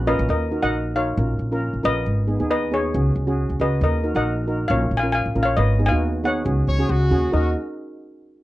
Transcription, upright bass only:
0.00 0.16 A#1 medium
0.19 0.28 A#1 loud
0.29 0.60 D#2 medium
0.63 1.14 A#1 medium
1.17 1.38 A#1 loud
1.39 1.70 A#1 medium
1.73 1.83 A#1 medium
1.84 2.04 A#1 medium
2.06 2.37 G#1 medium
2.40 2.90 D#2 medium
2.94 3.14 C#2 loud
3.16 3.46 C#2 medium
3.49 3.59 C#2 medium
3.60 3.80 C#2 medium
3.81 4.12 D#2 loud
4.15 4.66 A#1 medium
4.70 4.90 A#1 loud
4.91 5.22 A#1 medium
5.26 5.35 A#1 medium
5.36 5.56 A#1 medium
5.57 5.88 G#1 loud
5.91 6.42 D#2 medium
6.46 6.66 C#2 loud
6.67 6.87 C#2 medium
6.89 7.09 C#2 medium
7.11 7.31 D#2 medium
7.33 7.54 D#2 medium

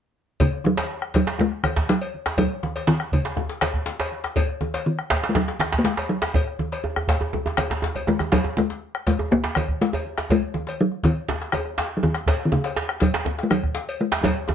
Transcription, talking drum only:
0.41 0.68 C#3 medium
0.66 1.15 F#3 medium
1.16 1.42 F#3 medium
1.41 1.91 G#3 loud
1.90 2.38 F#3 medium
2.39 2.84 F#3 medium
2.87 3.11 D#3 medium
3.13 4.08 C#3 medium
4.86 5.31 D#3 medium
5.29 5.37 G#3 medium
5.36 5.80 F#3 loud
5.79 5.86 A#3 medium
5.84 6.11 G#3 medium
6.09 6.59 F#3 medium
8.08 8.34 G#3 medium
8.32 8.60 F#3 medium
8.58 9.07 G#3 medium
9.08 9.18 G#3 medium
9.32 9.83 A#3 loud
9.81 10.30 G#3 medium
10.32 10.82 G#3 loud
10.81 11.06 F#3 medium
11.05 11.96 D#3 medium
11.97 12.05 F#3 medium
12.03 12.45 D#3 medium
12.45 12.54 D#3 medium
12.53 13.03 C#3 medium
13.02 13.43 F#3 medium
13.43 13.52 G#3 medium
13.51 14.02 F#3 medium
14.01 14.25 G#3 medium
14.24 14.55 F#3 medium

